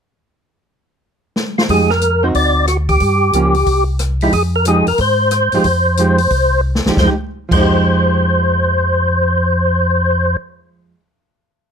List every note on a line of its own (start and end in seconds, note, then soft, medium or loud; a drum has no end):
1.36 snare medium
1.58 1.63 F4 medium
1.58 snare medium
1.69 2.32 F2 medium
1.69 1.88 F3 medium
1.69 1.88 G#3 medium
1.69 1.89 D#4 medium
1.69 1.89 G4 medium
1.69 1.91 G#4 medium
1.69 kick soft
1.69 open hi-hat soft
1.90 2.24 A#4 medium
1.90 snare soft
2.01 closed hi-hat soft
2.23 2.66 C4 medium
2.23 2.66 D#4 medium
2.23 2.66 F#4 medium
2.23 2.28 C5 medium
2.34 2.97 D2 medium
2.34 2.66 D5 medium
2.34 kick soft
2.34 open hi-hat soft
2.67 2.77 F#4 medium
2.67 cross-stick medium
2.67 closed hi-hat soft
2.89 3.84 G4 medium
2.89 kick soft
2.89 open hi-hat soft
3.00 3.31 G2 medium
3.00 kick soft
3.00 open hi-hat soft
3.33 3.64 C#2 medium
3.33 3.53 F3 medium
3.33 3.54 A#3 medium
3.33 3.54 C#4 medium
3.33 closed hi-hat medium
3.54 open hi-hat soft
3.66 4.29 C2 medium
3.66 kick soft
3.66 open hi-hat soft
3.99 cross-stick medium
3.99 closed hi-hat soft
4.21 4.33 F3 medium
4.21 4.33 G#3 medium
4.21 4.33 D#4 medium
4.21 4.33 E4 medium
4.21 4.33 G4 medium
4.21 open hi-hat soft
4.32 4.83 F2 medium
4.32 4.43 G#4 medium
4.32 kick soft
4.32 open hi-hat soft
4.56 4.66 A#4 medium
4.65 4.86 F3 medium
4.65 4.86 G#3 medium
4.65 4.86 D#4 medium
4.65 4.86 G4 medium
4.65 4.87 G#4 medium
4.65 closed hi-hat medium
4.87 4.93 F2 soft
4.87 5.00 A#4 medium
4.87 open hi-hat soft
4.98 5.49 G#2 medium
4.98 6.61 C5 loud
4.98 kick soft
4.98 open hi-hat soft
5.31 cross-stick medium
5.31 closed hi-hat medium
5.52 5.59 G#2 soft
5.52 5.65 F3 medium
5.52 5.65 G#3 medium
5.52 5.65 D#4 medium
5.52 5.65 G4 medium
5.52 open hi-hat soft
5.64 6.27 F2 medium
5.64 kick soft
5.64 open hi-hat soft
5.97 6.18 F3 medium
5.97 6.18 G#3 medium
5.97 6.18 D#4 medium
5.97 6.18 G4 medium
5.97 closed hi-hat medium
6.18 open hi-hat soft
6.30 6.81 C2 medium
6.30 kick soft
6.30 open hi-hat soft
6.75 snare medium
6.85 6.91 C2 soft
6.85 6.94 F3 medium
6.85 6.97 G#3 soft
6.85 6.97 D#4 medium
6.85 6.98 G4 medium
6.85 snare medium
6.96 7.09 F2 medium
6.96 7.09 F3 medium
6.96 7.10 C5 medium
6.96 kick medium
6.96 snare medium
7.01 7.12 G#3 medium
7.01 7.13 D#4 medium
7.07 7.15 G4 medium
7.49 10.36 F2 medium
7.49 10.95 F3 medium
7.49 10.37 C5 medium
7.49 kick medium
7.49 crash medium
7.54 11.00 G#3 medium
7.54 11.03 D#4 medium
7.61 11.07 G4 medium